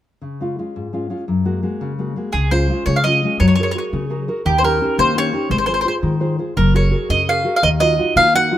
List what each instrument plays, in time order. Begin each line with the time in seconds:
0.22 nylon-string guitar C#3
0.41 nylon-string guitar G#3 C#4 F4
0.59 nylon-string guitar G#3 C#4 F4
0.76 nylon-string guitar G#2
0.93 nylon-string guitar G#3 C#4 F4
1.10 nylon-string guitar G#3 C#4 F4
1.28 nylon-string guitar F#2
1.45 nylon-string guitar G#3 A#3 F#4
1.63 nylon-string guitar G#3 A#3 F#4
1.81 nylon-string guitar C#3
1.99 nylon-string guitar G#3 A#3 F#4
2.16 nylon-string guitar G#3 A#3 F#4
2.33 upright bass C#2, nylon-string guitar C#3, mandolin G#4
2.51 nylon-string guitar G#3 C#4 F4, mandolin C5
2.70 nylon-string guitar G#3 C#4 F4
2.86 upright bass C#3, nylon-string guitar G#3, mandolin C#5
2.96 mandolin F5
3.04 nylon-string guitar G#3 C#4 F4, mandolin D#5
3.24 nylon-string guitar G#3 C#4 F4
3.40 upright bass F#2, nylon-string guitar F#3, mandolin C#5
3.48 mandolin C#5
3.55 nylon-string guitar F#4, mandolin C#5
3.59 nylon-string guitar G#4 A#4, mandolin C#5
3.71 nylon-string guitar F#4, mandolin C#5
3.75 nylon-string guitar G#4 A#4, mandolin C#5
3.93 nylon-string guitar C#3, upright bass F#3
4.10 nylon-string guitar F#4 G#4 A#4
4.28 nylon-string guitar F#4 G#4 A#4
4.45 upright bass D#2, nylon-string guitar D#3, mandolin G4
4.58 mandolin C5
4.63 nylon-string guitar C#4 D#4 G4, mandolin A#4
4.81 nylon-string guitar C#4 D#4 G4
4.98 upright bass D#3, nylon-string guitar A#3, mandolin C5
5.15 nylon-string guitar C#4 D#4 G4, mandolin C#5
5.33 nylon-string guitar C#4 D#4 G4
5.49 upright bass G#1, nylon-string guitar G#3, mandolin C5
5.58 mandolin C5
5.66 nylon-string guitar F4 G#4 C5, mandolin C5
5.74 mandolin C5
5.81 mandolin C5
5.85 nylon-string guitar F4 G#4 C5, mandolin C5
6.02 upright bass G#2, nylon-string guitar D#3
6.20 nylon-string guitar F4 G#4 C5
6.39 nylon-string guitar F4 G#4 C5
6.56 upright bass F#1, nylon-string guitar F#3, mandolin A#4
6.74 nylon-string guitar F#4 G#4 A#4, mandolin C#5
6.91 nylon-string guitar F#4 G#4 A#4
7.09 upright bass F#2, nylon-string guitar C#3, mandolin D#5
7.29 nylon-string guitar F#4 G#4 A#4, mandolin F5
7.45 nylon-string guitar F#4 G#4 A#4
7.56 mandolin F5
7.63 upright bass D#2, nylon-string guitar D#3, mandolin D#5
7.80 nylon-string guitar D#4 F4 F#4, mandolin D#5
7.99 nylon-string guitar D#4 F4 F#4
8.16 upright bass D#3, nylon-string guitar A#3, mandolin F5
8.34 nylon-string guitar D#4 F#4, mandolin F#5
8.51 nylon-string guitar D#4 F4 F#4